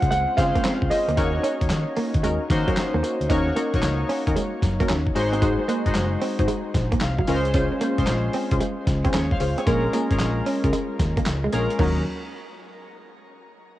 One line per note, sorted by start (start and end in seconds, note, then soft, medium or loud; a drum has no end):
0.00 0.09 C#3 loud
0.00 0.38 G#3 loud
0.00 0.38 C4 medium
0.00 0.38 C#4 medium
0.00 0.39 F4 medium
0.00 0.39 C5 loud
0.00 kick loud
0.00 closed hi-hat medium
0.11 0.24 C#2 medium
0.11 0.25 G#3 medium
0.11 0.38 F#5 loud
0.11 closed hi-hat medium
0.11 tambourine medium
0.37 0.51 C#3 loud
0.37 1.02 G#3 medium
0.37 1.02 C4 medium
0.37 0.57 C#4 medium
0.37 1.02 C#4 medium
0.37 0.57 F4 medium
0.37 1.02 F4 medium
0.37 0.57 G#4 medium
0.37 0.57 C5 medium
0.37 1.02 C5 medium
0.37 0.92 F5 loud
0.37 muted clean electric guitar stroke soft
0.37 kick loud
0.37 snare medium
0.37 closed hi-hat medium
0.37 tambourine medium
0.55 0.62 A#3 medium
0.55 kick loud
0.55 closed hi-hat medium
0.64 0.78 C4 medium
0.64 muted fingered electric bass stroke soft
0.64 snare loud
0.64 clap loud
0.64 closed hi-hat medium
0.64 tambourine medium
0.82 0.89 C#2 medium
0.82 kick loud
0.90 1.10 C#4 medium
0.90 1.10 F4 medium
0.90 1.10 G#4 medium
0.90 1.10 C5 medium
0.90 2.99 D#5 medium
0.90 muted clean electric guitar stroke soft
0.90 open hi-hat medium
0.90 tambourine medium
1.08 1.15 D2 medium
1.08 1.16 A#3 medium
1.08 closed hi-hat soft
1.17 1.37 D#2 loud
1.17 1.99 A#3 medium
1.17 1.42 C#4 medium
1.17 1.99 C#4 medium
1.17 1.31 D#4 medium
1.17 1.42 D#4 medium
1.17 2.00 D#4 medium
1.17 1.42 F#4 medium
1.17 2.00 F#4 medium
1.17 1.43 A#4 loud
1.17 2.00 C#5 medium
1.17 kick loud
1.17 closed hi-hat medium
1.17 tambourine medium
1.35 muted clean electric guitar stroke soft
1.43 1.58 C#4 medium
1.43 closed hi-hat medium
1.43 tambourine medium
1.61 1.68 D#2 medium
1.61 kick medium
1.61 closed hi-hat medium
1.70 1.84 D#3 loud
1.70 snare loud
1.70 clap medium
1.70 closed hi-hat medium
1.70 tambourine medium
1.96 2.11 A#3 medium
1.96 muted fingered electric bass stroke soft
1.96 open hi-hat medium
2.14 2.21 D#3 loud
2.14 kick loud
2.14 closed hi-hat medium
2.23 2.37 D#2 medium
2.23 2.37 G#3 medium
2.23 2.43 C#4 medium
2.23 2.43 D#4 medium
2.23 2.43 F#4 medium
2.23 2.43 A#4 medium
2.23 closed hi-hat medium
2.23 tambourine medium
2.50 2.63 D#3 loud
2.50 3.14 A#3 medium
2.50 3.14 C#4 medium
2.50 3.14 D#4 medium
2.50 3.14 F#4 medium
2.50 3.15 C5 loud
2.50 muted clean electric guitar stroke soft
2.50 kick loud
2.50 snare medium
2.50 closed hi-hat medium
2.50 tambourine medium
2.68 2.75 F#3 medium
2.68 2.80 C#4 medium
2.68 2.80 D#4 medium
2.68 2.80 F#4 medium
2.68 2.80 A#4 medium
2.68 kick loud
2.68 closed hi-hat medium
2.77 muted fingered electric bass stroke soft
2.77 muted clean electric guitar stroke soft
2.77 snare loud
2.77 clap medium
2.77 closed hi-hat medium
2.77 tambourine medium
2.94 3.01 D#2 medium
2.94 3.01 A#3 medium
3.03 3.17 A#3 medium
3.03 closed hi-hat medium
3.03 tambourine medium
3.21 3.27 D2 medium
3.21 closed hi-hat medium
3.30 3.50 D#2 loud
3.30 3.62 A#3 medium
3.30 3.49 C#4 loud
3.30 3.44 D#4 medium
3.30 3.49 D#4 medium
3.30 3.62 D#4 medium
3.30 3.49 F#4 medium
3.30 3.62 F#4 medium
3.30 3.49 A#4 loud
3.30 3.62 C#5 loud
3.30 kick loud
3.30 closed hi-hat medium
3.30 tambourine medium
3.47 muted clean electric guitar stroke soft
3.56 3.70 A#3 medium
3.56 3.76 C#4 medium
3.56 3.76 D#4 medium
3.56 3.76 F#4 medium
3.56 3.76 A#4 medium
3.56 closed hi-hat medium
3.56 tambourine medium
3.74 3.81 A#1 medium
3.74 4.55 A#3 medium
3.74 4.55 D#4 medium
3.74 4.55 F#4 medium
3.74 4.56 C#5 medium
3.74 kick loud
3.74 closed hi-hat medium
3.83 4.03 C#2 loud
3.83 snare medium
3.83 clap medium
3.83 closed hi-hat medium
3.83 tambourine medium
4.09 4.23 C#4 medium
4.09 open hi-hat medium
4.27 4.34 D#2 loud
4.27 4.39 C#4 medium
4.27 4.39 D#4 medium
4.27 4.39 F#4 medium
4.27 4.40 A#4 medium
4.27 kick loud
4.27 closed hi-hat medium
4.36 4.50 G#3 medium
4.36 closed hi-hat medium
4.36 tambourine medium
4.62 4.82 F#2 medium
4.62 muted clean electric guitar stroke medium
4.62 kick loud
4.62 snare medium
4.62 closed hi-hat medium
4.62 tambourine medium
4.80 4.87 A#3 medium
4.80 4.92 C#4 medium
4.80 4.92 D#4 medium
4.80 4.92 F#4 medium
4.80 4.92 A#4 medium
4.80 kick loud
4.80 closed hi-hat medium
4.89 5.09 D#2 medium
4.89 5.03 C#4 medium
4.89 snare loud
4.89 clap medium
4.89 closed hi-hat medium
4.89 tambourine medium
5.07 kick medium
5.15 5.55 G#1 loud
5.15 5.68 G#3 loud
5.15 5.35 D#4 medium
5.15 5.69 D#4 medium
5.15 5.35 F#4 medium
5.15 5.69 F#4 medium
5.15 5.35 G#4 medium
5.15 5.35 C5 medium
5.15 5.69 C5 loud
5.15 muted clean electric guitar stroke soft
5.15 open hi-hat medium
5.15 tambourine medium
5.33 5.40 C4 medium
5.33 closed hi-hat medium
5.42 5.56 G#3 medium
5.42 5.61 D#4 medium
5.42 5.61 F#4 medium
5.42 5.61 G#4 medium
5.42 5.62 C5 loud
5.42 kick loud
5.42 closed hi-hat loud
5.42 tambourine medium
5.59 muted clean electric guitar stroke soft
5.68 5.82 A#3 medium
5.68 5.88 D#4 medium
5.68 5.88 F#4 medium
5.68 5.88 G#4 medium
5.68 5.88 C5 medium
5.68 closed hi-hat medium
5.68 tambourine medium
5.86 5.93 G#1 medium
5.86 6.67 G#3 medium
5.86 6.67 D#4 medium
5.86 6.67 F#4 medium
5.86 6.68 C5 medium
5.86 kick medium
5.86 closed hi-hat medium
5.95 6.15 F#1 loud
5.95 snare loud
5.95 clap medium
5.95 closed hi-hat medium
5.95 tambourine medium
6.22 6.36 C4 medium
6.22 open hi-hat medium
6.39 6.46 G#1 medium
6.39 6.52 D#4 medium
6.39 6.52 F#4 medium
6.39 6.52 G#4 medium
6.39 6.52 C5 medium
6.39 kick loud
6.39 closed hi-hat medium
6.48 6.62 G#3 medium
6.48 closed hi-hat medium
6.48 tambourine medium
6.74 6.95 A#1 medium
6.74 muted clean electric guitar stroke medium
6.74 kick loud
6.74 snare medium
6.74 closed hi-hat medium
6.74 tambourine medium
6.92 6.99 A#3 medium
6.92 kick loud
6.92 closed hi-hat medium
7.01 7.22 C2 medium
7.01 7.51 F5 medium
7.01 muted clean electric guitar stroke soft
7.01 snare loud
7.01 clap medium
7.01 closed hi-hat medium
7.01 tambourine medium
7.19 7.26 F#3 medium
7.19 kick medium
7.27 7.68 C#2 loud
7.27 7.81 G#3 medium
7.27 7.42 G#3 medium
7.27 7.81 C#4 medium
7.27 7.47 C#4 medium
7.27 7.47 F4 medium
7.27 7.81 F4 medium
7.27 7.47 G#4 medium
7.27 7.37 A#4 medium
7.27 7.48 C5 medium
7.27 open hi-hat medium
7.27 tambourine medium
7.35 7.85 C5 loud
7.45 closed hi-hat medium
7.54 7.74 C#4 medium
7.54 7.69 C#4 medium
7.54 7.74 F4 medium
7.54 7.74 G#4 medium
7.54 7.74 C5 loud
7.54 kick loud
7.54 closed hi-hat loud
7.54 tambourine medium
7.72 muted clean electric guitar stroke soft
7.81 7.95 A#3 medium
7.81 8.00 C#4 medium
7.81 8.00 F4 medium
7.81 8.00 G#4 medium
7.81 8.01 C5 medium
7.81 closed hi-hat medium
7.81 tambourine medium
7.98 8.05 C2 medium
7.98 8.79 G#3 medium
7.98 8.80 C#4 medium
7.98 8.80 F4 medium
7.98 8.80 C5 loud
7.98 kick medium
7.98 closed hi-hat medium
8.07 8.28 A#1 loud
8.07 snare loud
8.07 clap medium
8.07 closed hi-hat medium
8.07 tambourine medium
8.33 8.48 C4 medium
8.33 open hi-hat medium
8.51 8.58 C2 loud
8.51 8.64 C#4 medium
8.51 8.64 F4 medium
8.51 8.64 G#4 medium
8.51 8.64 C5 medium
8.51 kick loud
8.51 closed hi-hat medium
8.60 8.75 G#3 medium
8.60 closed hi-hat medium
8.60 tambourine medium
8.87 9.07 C#2 loud
8.87 muted clean electric guitar stroke soft
8.87 kick loud
8.87 snare medium
8.87 closed hi-hat medium
8.87 tambourine medium
9.04 9.12 C4 medium
9.04 9.17 C#4 medium
9.04 9.17 F4 medium
9.04 9.17 G#4 medium
9.04 9.17 C5 medium
9.04 kick loud
9.04 closed hi-hat medium
9.13 9.34 D#2 medium
9.13 9.28 C#4 medium
9.13 9.31 G#4 medium
9.13 9.31 C#5 medium
9.13 snare loud
9.13 clap medium
9.13 closed hi-hat medium
9.13 tambourine medium
9.31 9.57 C5 medium
9.31 9.57 F5 medium
9.31 kick medium
9.40 9.54 C#2 loud
9.40 9.60 C#4 medium
9.40 9.60 F4 medium
9.40 9.60 G#4 medium
9.40 9.60 C5 medium
9.40 muted clean electric guitar stroke soft
9.40 open hi-hat medium
9.40 tambourine medium
9.58 9.65 C4 medium
9.58 9.84 G#4 medium
9.58 9.84 C#5 medium
9.58 closed hi-hat medium
9.66 9.87 A#1 loud
9.66 9.99 G#3 medium
9.66 9.81 A#3 medium
9.66 9.86 C#4 medium
9.66 9.99 C#4 medium
9.66 9.86 F4 medium
9.66 9.99 F4 medium
9.66 9.86 G#4 medium
9.66 9.86 A#4 loud
9.66 9.99 A#4 loud
9.66 kick loud
9.66 closed hi-hat medium
9.66 tambourine medium
9.85 muted clean electric guitar stroke soft
9.93 10.07 A#3 medium
9.93 10.13 C#4 medium
9.93 10.13 F4 medium
9.93 10.13 G#4 medium
9.93 10.13 A#4 medium
9.93 closed hi-hat medium
9.93 tambourine medium
10.11 10.18 G#1 medium
10.11 10.92 G#3 medium
10.11 10.92 C#4 medium
10.11 10.92 F4 medium
10.11 10.93 A#4 medium
10.11 kick medium
10.11 closed hi-hat medium
10.20 10.40 A#1 loud
10.20 snare loud
10.20 clap medium
10.20 closed hi-hat medium
10.20 tambourine medium
10.46 10.61 C#4 medium
10.46 open hi-hat medium
10.64 10.71 C#2 medium
10.64 10.76 C#4 medium
10.64 10.76 F4 medium
10.64 10.76 G#4 medium
10.64 10.77 A#4 medium
10.64 kick loud
10.64 closed hi-hat medium
10.73 10.87 G#3 medium
10.73 closed hi-hat medium
10.73 tambourine medium
10.99 11.19 D#2 medium
10.99 muted clean electric guitar stroke medium
10.99 kick loud
10.99 snare medium
10.99 closed hi-hat medium
10.99 tambourine medium
11.17 11.24 A#3 medium
11.17 kick loud
11.17 closed hi-hat medium
11.26 11.46 C#2 medium
11.26 muted clean electric guitar stroke soft
11.26 snare loud
11.26 clap medium
11.26 closed hi-hat medium
11.26 tambourine medium
11.44 11.51 G#3 medium
11.52 11.66 A#1 medium
11.52 11.75 G#3 medium
11.52 11.67 A#3 medium
11.52 11.72 C#4 medium
11.52 11.75 C#4 medium
11.52 11.72 F4 medium
11.52 11.76 F4 medium
11.52 11.72 G#4 medium
11.52 11.72 A#4 medium
11.52 11.76 A#4 loud
11.52 closed hi-hat medium
11.52 tambourine medium
11.70 closed hi-hat medium
11.79 12.04 D#2 medium
11.79 12.04 F#3 medium
11.79 11.95 A#3 medium
11.79 12.00 C#4 medium
11.79 12.04 C#4 medium
11.79 12.01 D#4 medium
11.79 12.04 D#4 medium
11.79 12.01 F#4 medium
11.79 12.04 A#4 medium
11.79 12.01 A#4 medium
11.79 kick loud
11.79 floor tom loud
11.79 crash medium